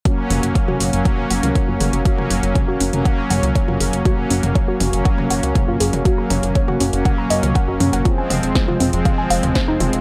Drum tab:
HH |x-oxx-oxx-oxx-ox|x-oxx-oxx-oxx-ox|x-oxx-oxx-oxx-ox|x-oxx-oxx-oxx-ox|
SD |----------------|----------------|----------------|----------------|
T2 |--o--o--o--o--o-|-o--o--o--o--o--|o--o--o--o--o--o|--o--o--o--o--o-|
BD |o---o---o---o---|o---o---o---o---|o---o---o---o---|o---o---o---o---|

HH |x-oxx-oxx-oxx-ox|
SD |----o-------o---|
T2 |--o--o--o--o--o-|
BD |o---o---o---o---|